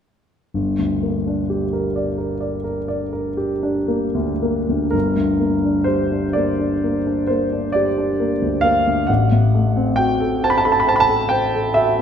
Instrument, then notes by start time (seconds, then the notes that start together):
grand piano
0.54 G1
0.79 D2
1.03 A#3
1.27 D4
1.50 G4
1.73 A#4
1.96 D5
2.18 A#4
2.41 D5
2.64 A#4
2.88 D5
3.13 A#4
3.37 G4
3.63 D4
3.88 A#3
4.14 D2
4.42 A#3
4.69 D2
4.91 G1 A#4
5.16 D2
5.40 A#3
5.64 D4
5.84 G4 C5
6.12 D4
6.33 A#3 D5
6.59 D4
6.84 A#3
7.07 D4
7.27 A#3 C5
7.52 D4
7.72 G4 D5
7.98 D4
8.20 A#3
8.42 D2
8.61 A#3 F5
8.87 D2
9.07 A1 F#5
9.32 A2
9.55 A3
9.76 C4
9.96 F#4 G5
10.20 A4
10.44 C5 A5
10.50 B5
10.58 A5
10.65 A4 B5
10.72 A5
10.80 B5
10.87 C5 A5
10.96 B5
11.00 A5
11.09 A4
11.29 C5 G5
11.54 A4
11.74 F#4 E5
11.99 C4